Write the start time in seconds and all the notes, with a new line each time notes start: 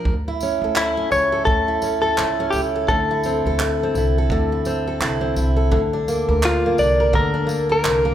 Already playing: A#2 F3 D4 A#4
0.05 D2, kick
0.28 E4
0.40 C#4, tambourine
0.62 D2 A4
0.76 E4, clap
0.97 C#4
1.11 C#2 E4 C#5, tambourine
1.32 A4
1.45 D2 A4, kick
1.68 E4
1.82 C#4, tambourine
2.02 A4
2.18 C#2 E4, clap
2.40 C#4
2.50 C#2 E4 G4, tambourine
2.75 A4
2.88 D2 D3 A4, kick
3.11 E4
3.23 C4, tambourine
3.45 D2 A4
3.59 E4, clap
3.83 C4
3.94 C2 E4, tambourine
4.18 A4
4.30 D2 D3, kick
4.52 E4
4.65 C4, tambourine
4.87 A4
5.01 C2 E4, clap
5.21 C4
5.36 C2 E4, tambourine
5.56 A4
5.71 D2 D3, kick
5.93 D4
6.08 A#3, tambourine
6.28 D2 A#4
6.43 D4 F4, clap
6.66 A#3
6.78 C2 D4 D5, tambourine
7.00 A#4
7.13 D2 D3 A#4, kick
7.34 D4
7.47 A#3, tambourine
7.69 A#4
7.83 C2 D4, clap
8.05 A#3